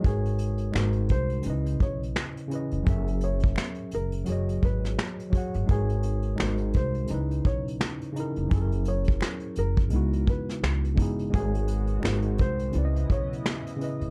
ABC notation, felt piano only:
X:1
M:4/4
L:1/16
Q:"Swing 16ths" 1/4=85
K:C#dor
V:1 name="Felt piano"
G6 ^B2 z2 c z4 z | z2 c4 A4 B2 z4 | G6 ^B2 z2 c z4 z | z2 c4 A4 B2 z4 |
G6 ^B2 z2 c z4 z |]